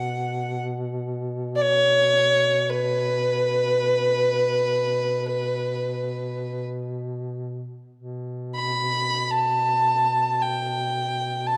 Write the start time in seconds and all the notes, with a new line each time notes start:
Already playing: B2 F#5
1.56 D5
1.62 C#5
2.70 B4
7.95 B2
8.55 B5
9.31 A5
10.41 G5
11.47 A5